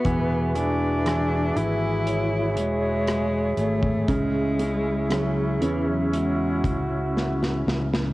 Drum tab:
HH |x-x-x-x-x-x-x-x-|x-x-x-x-x-x-----|
SD |----r-------r---|----r-------oooo|
BD |o--------------o|o---------o-----|